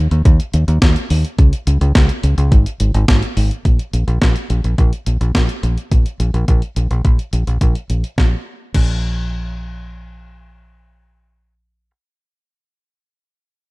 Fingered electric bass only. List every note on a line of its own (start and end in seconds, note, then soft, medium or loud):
0.11 0.24 D#2 medium
0.25 0.38 D#2 loud
0.54 0.66 D#2 loud
0.68 0.80 D#2 loud
0.82 0.94 D#2 loud
1.10 1.23 D#2 loud
1.39 1.51 C#2 loud
1.67 1.79 C#2 loud
1.81 1.94 C#2 loud
1.95 2.08 C#2 loud
2.23 2.36 C#2 loud
2.38 2.50 C#2 loud
2.52 2.64 G#1 loud
2.80 2.93 G#1 loud
2.94 3.07 G#1 loud
3.08 3.21 G#1 loud
3.37 3.49 G#1 loud
3.65 3.78 A#1 loud
3.93 4.06 A#1 medium
4.08 4.20 A#1 medium
4.22 4.34 A#1 loud
4.50 4.62 A#1 loud
4.64 4.77 A#1 medium
4.78 4.91 A#1 loud
5.07 5.19 A#1 medium
5.21 5.33 A#1 medium
5.35 5.47 A#1 loud
5.63 5.76 A#1 medium
5.92 6.04 A#1 loud
6.20 6.32 A#1 loud
6.34 6.46 A#1 medium
6.48 6.61 A#1 medium
6.76 6.89 A#1 medium
6.91 7.03 A#1 medium
7.05 7.17 A#1 medium
7.33 7.45 A#1 medium
7.47 7.60 A#1 medium
7.61 7.74 A#1 medium
7.90 8.02 A#1 medium
8.18 8.34 A#1 medium
8.74 11.90 A#1 medium